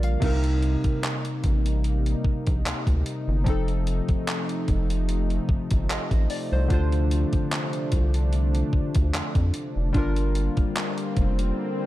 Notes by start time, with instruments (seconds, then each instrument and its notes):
Already playing: analog synth bass A#1, analog synth pad D3 G3 A#3 F4, synth keys G3 D4 F4 A#4 D5
0.03 synth keys F5, closed hi-hat
0.20 analog synth bass C2, synth keys C3 C4 D#4, analog synth pad C3 G3 A#3 D#4, kick, closed hi-hat, crash
0.26 synth keys A#4
0.44 closed hi-hat
0.62 closed hi-hat
0.84 analog synth bass A1, kick, closed hi-hat
1.03 clap, closed hi-hat
1.25 closed hi-hat
1.44 analog synth bass A1, kick, closed hi-hat
1.66 closed hi-hat
1.84 closed hi-hat
2.06 closed hi-hat
2.25 analog synth bass A#1, kick
2.47 analog synth bass A#1, kick, closed hi-hat
2.65 analog synth bass D2, clap, closed hi-hat
2.87 analog synth bass D2, kick, closed hi-hat
3.06 closed hi-hat
3.28 analog synth bass G1
3.44 analog synth bass F1, synth keys F3 C4 D#4, analog synth pad F3 A3, kick, closed hi-hat
3.50 synth keys A4
3.68 closed hi-hat
3.87 closed hi-hat
4.09 analog synth bass F1, kick, closed hi-hat
4.27 clap, closed hi-hat
4.49 closed hi-hat
4.68 analog synth bass F1, kick, closed hi-hat
4.90 closed hi-hat
5.09 closed hi-hat
5.30 closed hi-hat
5.49 analog synth bass G1, kick
5.71 analog synth bass G1, kick, closed hi-hat
5.89 analog synth bass A1, synth keys D#5, clap, closed hi-hat
6.11 analog synth bass A1, kick, closed hi-hat
6.30 synth keys D5, open hi-hat
6.52 analog synth bass C2, synth keys C5
6.68 analog synth bass D2, synth keys D3 D4 F4, analog synth pad D4, kick, closed hi-hat
6.74 synth keys C5
6.92 closed hi-hat
7.11 closed hi-hat
7.33 analog synth bass C2, kick, closed hi-hat
7.51 clap, closed hi-hat
7.73 closed hi-hat
7.92 analog synth bass C2, kick, closed hi-hat
8.14 closed hi-hat
8.33 closed hi-hat
8.55 closed hi-hat
8.73 analog synth bass D2, kick
8.95 analog synth bass D2, kick, closed hi-hat
9.13 analog synth bass F2, clap, closed hi-hat
9.35 analog synth bass F2, kick, closed hi-hat
9.54 closed hi-hat
9.76 analog synth bass F1
9.93 analog synth bass G1, analog synth pad D3 G3 A#3 F4, synth keys G3 D4 F4, kick, closed hi-hat, swell
9.98 synth keys A#4
10.16 closed hi-hat
10.35 closed hi-hat
10.57 analog synth bass F1, kick, closed hi-hat
10.76 clap, closed hi-hat
10.98 closed hi-hat
11.17 analog synth bass F1, kick, closed hi-hat
11.39 closed hi-hat